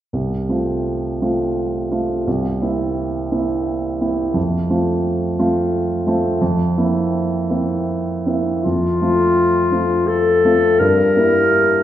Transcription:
0.13 grand piano C2
0.49 grand piano A3 C4 F4
1.22 grand piano A3 C4 F4
1.91 grand piano A3 C4 F4
2.27 grand piano C2
2.62 grand piano A#3 C4 E4
3.32 grand piano A#3 C4 E4
4.01 grand piano A#3 C4 E4
4.34 grand piano F2
4.70 grand piano A3 C4 F4
5.39 grand piano A3 C4 F4
6.07 grand piano A3 C4 F4
6.41 grand piano F2
6.78 grand piano A#3 C4 E4
7.50 grand piano A#3 C4 E4
8.26 grand piano A#3 C4 E4
8.62 grand piano F2, clarinet F4
9.02 grand piano A3 C4 F4
9.72 grand piano A3 C4 F4
10.07 clarinet A4
10.45 grand piano A3 C4 F4
10.79 grand piano G2, clarinet A#4
11.16 grand piano G3 A#3 E4

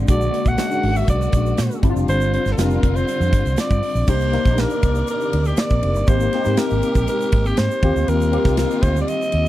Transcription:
Already playing: string section D3 G#3, tine electric piano G#3 C4 D4
0.07 fingered electric bass A#1, tine electric piano G#3 A#3 D4 F#4, string section A#3 F#4, alto saxophone D5, kick, closed hi-hat, shaker
0.21 shaker
0.34 closed hi-hat
0.46 fingered electric bass A#1, alto saxophone F#5, kick, shaker
0.57 tine electric piano G#3 C#4 D4 F#4, snare, closed hi-hat, shaker
0.71 shaker
0.83 fingered electric bass G#1, open hi-hat
0.96 alto saxophone E5, shaker
1.08 fingered electric bass B1, alto saxophone D5, kick, closed hi-hat, shaker
1.22 shaker
1.32 fingered electric bass A#1, kick, closed hi-hat, shaker
1.46 shaker
1.57 fingered electric bass A#2, snare, closed hi-hat, shaker
1.71 shaker
1.82 fingered electric bass G1, string section D3 G3 C4 F4, tine electric piano G3 C4 D4 E4, kick, closed hi-hat
1.90 tine electric piano F4
1.96 fingered electric bass F1, shaker
2.08 fingered electric bass G1, alto saxophone C5, closed hi-hat, shaker
2.21 shaker
2.34 alto saxophone C5, closed hi-hat
2.46 fingered electric bass G1, snare, shaker
2.52 alto saxophone A4
2.57 fingered electric bass F1, tine electric piano G3 C4 D4 F4, alto saxophone A#4, snare, closed hi-hat, shaker
2.70 shaker
2.83 fingered electric bass F1, kick, closed hi-hat
2.96 alto saxophone C5, shaker
3.08 closed hi-hat, shaker
3.20 fingered electric bass F2, shaker
3.33 fingered electric bass G1, kick, closed hi-hat, shaker
3.46 fingered electric bass C2, shaker
3.57 alto saxophone D5, snare, closed hi-hat, shaker
3.70 fingered electric bass G2, kick, shaker
3.83 open hi-hat
3.95 fingered electric bass A#1, shaker
4.07 fingered electric bass C2, string section C3 D#3 A#3 D5, tine electric piano A#3 D4 D#4 G4, alto saxophone C5, kick, crash, shaker
4.20 shaker
4.32 tine electric piano A#3 D4 D#4 A#4, snare, ride
4.45 fingered electric bass A#1, kick, snare, shaker
4.58 alto saxophone A#4, snare, ride, shaker
4.70 shaker
4.83 fingered electric bass C2, kick, ride, shaker
4.95 shaker
5.07 alto saxophone A#4, ride, shaker
5.21 shaker
5.33 fingered electric bass D2, ride
5.45 alto saxophone G4, shaker
5.57 alto saxophone D5, snare, ride, shaker
5.70 fingered electric bass A#1, kick, shaker
5.83 fingered electric bass F1, ride
5.95 fingered electric bass G1, shaker
6.07 fingered electric bass G#1, string section G#3 G4, tine electric piano A#3 C4 D#4 G4, alto saxophone C5, kick, ride, shaker
6.20 shaker
6.33 tine electric piano A#3 C4 D#4 G4, snare, ride
6.45 fingered electric bass G#2, snare, shaker
6.57 alto saxophone A#4, snare, ride, shaker
6.70 fingered electric bass G#1, shaker
6.82 ride, shaker
6.95 fingered electric bass A#1, kick, shaker
7.08 alto saxophone A#4, ride, shaker
7.21 shaker
7.32 fingered electric bass G#1, kick, ride
7.45 alto saxophone G4, shaker
7.57 fingered electric bass G#2, alto saxophone C5, snare, ride, shaker
7.71 shaker
7.83 fingered electric bass D#2, string section D#3 G3 C4 F4, tine electric piano A#3 C4 F4 G4, kick, ride
7.96 fingered electric bass D2, shaker
8.08 fingered electric bass D#2, alto saxophone A#4, ride, shaker
8.21 shaker
8.32 tine electric piano A#3 C4 F4 G4, ride
8.45 fingered electric bass C2, kick, snare, shaker
8.57 alto saxophone A#4, snare, ride, shaker
8.71 shaker
8.82 fingered electric bass D2, alto saxophone C5, kick, ride, shaker
8.96 shaker
9.01 alto saxophone D5
9.08 alto saxophone D#5, ride, shaker
9.22 shaker
9.32 fingered electric bass D#2, ride

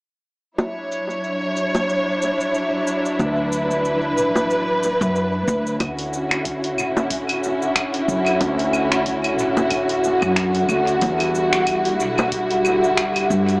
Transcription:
0.58 string section F#3 D4 E4 C#5, high bongo, cabasa
0.92 cabasa
1.10 cabasa
1.24 cabasa
1.57 cabasa
1.75 high bongo, cabasa
1.89 cabasa
2.22 cabasa
2.40 cabasa
2.54 cabasa
2.87 cabasa
3.06 cabasa
3.19 upright bass D2, string section B4, high bongo, cabasa
3.52 cabasa
3.71 cabasa
3.85 cabasa
4.17 upright bass A1, cabasa
4.35 high bongo, cabasa
4.51 cabasa
4.83 cabasa
5.01 upright bass F#2, cabasa
5.16 cabasa
5.48 upright bass D2, cabasa
5.67 cabasa
5.80 upright bass D2, string section D3 C#4 E4 F#4, kick, open hi-hat, high bongo, cabasa, claves
5.99 open hi-hat
6.13 cabasa
6.31 finger snap, cabasa, claves
6.45 kick, open hi-hat, cabasa
6.64 open hi-hat
6.78 upright bass A1, cabasa, claves
6.97 high bongo, cabasa
7.10 kick, open hi-hat, cabasa
7.29 open hi-hat, claves
7.44 cabasa
7.62 cabasa
7.76 finger snap, kick, open hi-hat, cabasa, claves
7.94 open hi-hat
8.08 upright bass F#2, cabasa
8.26 open hi-hat, cabasa, claves
8.41 upright bass D2, kick, open hi-hat, high bongo, cabasa
8.59 open hi-hat
8.73 cabasa, claves
8.92 finger snap, cabasa
9.06 kick, open hi-hat, cabasa
9.24 open hi-hat, claves
9.39 upright bass A1, cabasa
9.57 high bongo, cabasa
9.71 kick, open hi-hat, cabasa, claves
9.89 open hi-hat
10.04 cabasa
10.22 upright bass F#2, cabasa, claves
10.36 finger snap, kick, open hi-hat, cabasa
10.55 open hi-hat
10.69 upright bass D2, cabasa, claves
10.87 open hi-hat, cabasa
11.01 upright bass E2, string section G3 E4, kick, open hi-hat, high bongo, cabasa
11.20 open hi-hat, claves
11.35 cabasa
11.53 finger snap, cabasa
11.67 kick, open hi-hat, cabasa, claves
11.85 open hi-hat
11.99 upright bass B1, cabasa
12.18 high bongo, cabasa, claves
12.32 kick, open hi-hat, cabasa
12.51 open hi-hat
12.65 cabasa, claves
12.84 cabasa
12.97 finger snap, kick, open hi-hat, cabasa
13.16 open hi-hat, claves
13.30 upright bass G2, cabasa
13.49 open hi-hat, cabasa

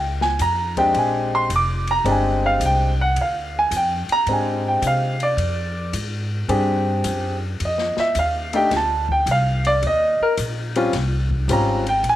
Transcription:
Already playing: upright bass C#2, grand piano G5
0.21 grand piano G#5, snare
0.39 upright bass F2, grand piano A#5, hi-hat pedal, ride
0.77 grand piano G#3 C4 D4 G4 G5, kick, ride
0.94 upright bass A#1, ride
0.99 grand piano G#5
1.35 grand piano C6
1.50 upright bass F1, hi-hat pedal, ride
1.56 grand piano D6
1.87 grand piano A#5, ride
2.04 upright bass G1, grand piano G#3 C4 D4 G4, ride
2.11 grand piano G#5
2.46 grand piano F5
2.60 upright bass C2, hi-hat pedal, ride
2.66 grand piano G5
3.01 grand piano F#5
3.16 upright bass D2, ride
3.21 grand piano F5
3.59 grand piano G#5
3.71 upright bass F2, hi-hat pedal, ride
3.76 grand piano G5
4.08 muted upright bass stroke, ride
4.12 grand piano A#5
4.26 upright bass G#2, grand piano G#3 C4 D4 G4, ride
4.33 grand piano G#5
4.68 grand piano G5
4.82 upright bass C3, hi-hat pedal, ride
4.87 grand piano F5
5.20 grand piano D5, ride
5.37 upright bass F2, ride
5.93 upright bass G#2, hi-hat pedal, ride
6.48 upright bass G2, grand piano C4 D4 G4 G#4, ride
7.04 upright bass F#2, hi-hat pedal, ride
7.60 upright bass F2, ride
7.65 grand piano D#5
7.78 snare
7.97 grand piano E5, muted upright bass stroke, snare
8.15 upright bass D#2, grand piano F5, hi-hat pedal, ride
8.53 grand piano A3 D4 D#4 G4 G5, ride
8.71 upright bass D2, snare, ride
8.76 grand piano A5
9.09 grand piano G5, kick
9.26 upright bass C2, hi-hat pedal, ride
9.31 grand piano F5
9.65 grand piano D5, ride
9.82 upright bass D#2, ride
9.87 grand piano D#5
10.20 grand piano A#4, muted upright bass stroke
10.37 upright bass A#1, hi-hat pedal, ride
10.76 grand piano G3 C4 C#4 F4, ride
10.93 upright bass C2, snare, ride
11.31 kick
11.48 upright bass G#1, grand piano G3 C4 C#4 F4, hi-hat pedal, ride
11.53 grand piano A#5
11.87 grand piano G5, ride
12.03 upright bass A#1, ride
12.09 grand piano G#5

